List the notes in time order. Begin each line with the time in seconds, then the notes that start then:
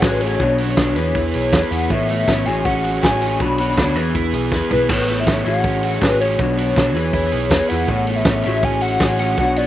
Already playing: A2 A3 C#4
0.02 A1 A3 C#4 F#4 G#4 B4 C#5, kick, snare
0.21 A3 F#4 G#4 C#5, open hi-hat
0.40 B1 B2 F#3 B3 D4 F#4 C#5, kick
0.58 B3 D4 F#4 C#5, open hi-hat
0.68 snare
0.77 B1 B3 D4 F#4 C#5, kick, snare
0.96 E2 E3 B3 E4 G#4 B4, open hi-hat
1.15 E2 E4, kick
1.34 B1 G#4, open hi-hat
1.53 E2 E3 B3 E4 G#4 B4, kick, snare
1.71 E2 E4 G#4 B4 F#5, open hi-hat
1.90 A1 A2 A3 B3 E4 A4 C#5 E5, kick
2.09 A3 E4 A4 C#5, open hi-hat
2.19 E5
2.27 A1 B3 C#4 E4 A4 C#5, kick, snare
2.46 A1 A2 A3 C#4 F#4 G#4 C#5 G#5, open hi-hat
2.65 C#4 F#5, kick
2.84 F#4, open hi-hat
3.02 A1 A3 C#4 F#4 G#4 C#5 G#5, kick, snare
3.21 C#4 F#4 G#4 C#5 G#5, open hi-hat
3.39 B1 B2 F#3 B3 D4 F#4 B5, kick
3.44 C#5
3.58 B3 D4 F#4 C#5, open hi-hat
3.62 B3
3.70 snare
3.78 D2 B3 D4 F#4 C#5, kick, snare
3.95 E2 E3 B3 E4 G#4 B4, open hi-hat
4.00 E3
4.15 E2 E4, kick
4.33 B1 G#4, open hi-hat
4.51 E2 E3 B3 E4 G#4 B4, kick, snare
4.70 B1 E4 G#4 B4, floor tom
4.87 A1 A2 A3 B3 E4 B4, kick, crash
4.92 A4 C#5
5.08 A3 E4 A4 C#5, open hi-hat
5.19 E5
5.27 A1 B3 C#4 E4 A4 C#5, kick, snare
5.45 A1 A2 A3 C#4 F#4 G#4 C#5 F#5, open hi-hat
5.64 C#4, kick
5.83 F#4 F#5, open hi-hat
6.01 A1 A3 C#4 F#4 G#4 B4 C#5, kick, snare
6.19 C#4 F#4 G#4 C#5, open hi-hat
6.38 B1 B2 F#3 B3 D4 F#4 C#5, kick
6.57 B3 D4 F#4 C#5, open hi-hat
6.69 snare
6.75 B1 B3 D4 F#4 C#5, kick, snare
6.94 E2 E3 B3 E4 G#4 B4, open hi-hat
7.13 E2 E4, kick
7.24 snare
7.32 B1 G#4, open hi-hat
7.50 E2 E3 B3 E4 G#4 B4, kick, snare
7.68 E2 E4 G#4 B4 F#5, open hi-hat
7.87 A1 A2 A3 B3 E4 A4, kick
7.91 C#5
8.07 A3 E4 A4 C#5, open hi-hat
8.16 E5, snare
8.25 A1 B3 C#4 E4, kick, snare
8.29 A4 C#5
8.43 A1 A2 F#4 G#4 C#5 E5, open hi-hat
8.48 A3 C#4
8.63 C#4 G#5, kick
8.81 F#4 F#5, open hi-hat
9.00 A1 A3 C#4 F#4 G#4, kick, snare
9.04 C#5
9.19 C#4 G#4 C#5 F#5, open hi-hat
9.23 F#4
9.38 B1 B2 F#3 B3 D4 F#4 F#5, kick
9.42 C#5
9.56 B3 D4 F#4 C#5 D5, open hi-hat